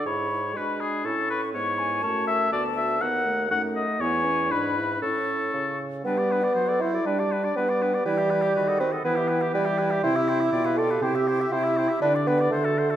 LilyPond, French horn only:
\new Staff \with { instrumentName = "French horn" } { \time 2/4 \key a \major \tempo 4 = 121 e'8 e'8 d'4 | cis'4 b4 | a4 b4 | b8 a8 a4 |
b8 cis'8 d'8 e'8 | cis'4. r8 | \key g \major g4 fis4 | g4 g4 |
e4 dis4 | e4 e4 | c4 b,4 | c4 c4 |
d4 d4 | }